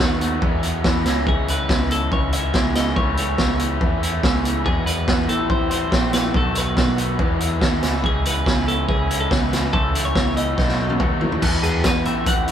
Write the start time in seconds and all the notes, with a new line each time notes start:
Already playing: B2 D#3 A3 B3 F#4 B4
0.00 D#2
0.19 A3 B3 F#4, closed hi-hat
0.41 E2 B2 E3 G#3 B3 E4, kick
0.62 E3 G#3 B3 E4, closed hi-hat
0.84 E2 B2 E3 G#3 B3 E4, kick, snare
1.04 C#2 C#3 E3 G#3 C#4 E4, snare, closed hi-hat
1.26 C#3 E3 G#3 C#4 E4 G#4, kick
1.48 B4, closed hi-hat
1.69 C#2, kick, snare
1.90 G#3 C#4 E4 A4, closed hi-hat
2.12 C#2 C#5, kick
2.32 G#3 C#4 E4 E5, closed hi-hat
2.52 C#2 C#3 E3 G#3 C#4 E4, kick, snare
2.75 G#3 C#4 E4 D#5, snare, closed hi-hat
2.96 C#2 C#3 E3 A3 C#4 E4 C#5, kick
3.17 C#5, closed hi-hat
3.38 C#2, kick, snare
3.59 A3 C#4 E4, closed hi-hat
3.81 E2, kick
4.02 A3 C#4 E4, closed hi-hat
4.21 C#2 C#3 E3 A3 C#4 E4, kick, snare
4.43 A3 C#4 E4, closed hi-hat
4.63 E2 B2 E3 G#3 B3 E4 G#4, kick
4.86 B4, closed hi-hat
5.08 E2, kick, snare
5.27 A1 A2 E3 A3 C4 E4 A4, closed hi-hat
5.50 C5, kick
5.69 A3 C4 E4 C5, closed hi-hat
5.89 A#1 A2 E3 A3 C4 E4, kick, snare
6.12 A3 C4 E4 B4, snare, closed hi-hat
6.33 B1 B2 D#3 A3 B3 F#4 A4, kick
6.55 B4, closed hi-hat
6.77 B1, kick, snare
6.97 A3 B3 F#4, closed hi-hat
7.18 E2 B2 E3 G#3 B3 E4, kick
7.38 E3 G#3 B3 E4, closed hi-hat
7.58 D#2 E2 B2 E3 G#3 B3 E4, kick, snare
7.80 C#3 E3 G#3 C#4 E4, snare, closed hi-hat
7.84 C#2
8.02 C#3 E3 G#3 C#4 E4 G#4, kick
8.25 B4, closed hi-hat
8.46 C#2, kick, snare
8.66 G#3 C#4 E4 A4, closed hi-hat
8.88 C#2 G#4, kick
9.08 G#3 C#4 E4, closed hi-hat
9.20 A4
9.29 C#2 C#3 E3 G#3 C#4 E4 B4, kick, snare
9.51 G#3 C#4 E4, snare, closed hi-hat
9.72 C#2 C#3 E3 A3 C#4 E4 A4, kick
9.95 closed hi-hat
10.05 C#5
10.15 C#2, kick, snare
10.36 A3 C#4 E4 D#5, closed hi-hat
10.55 B1 B2 F#3 A3 D#4 F#4, kick, snare
10.69 snare
10.76 A3 D#4 F#4
10.90 high tom
10.98 D#2 B2 F#3 A3 D#4 F#4, kick, mid tom
11.19 A3 D#4 F#4, floor tom
11.32 floor tom
11.41 E2 B2 E3 G#3 B3 E4, kick, crash
11.63 G#4, closed hi-hat
11.84 E2 B4, kick, snare, closed hi-hat
12.04 A1 A2 E3 A3 C4 E4 E5, closed hi-hat
12.26 F#5, kick, closed hi-hat
12.46 C4 E4, closed hi-hat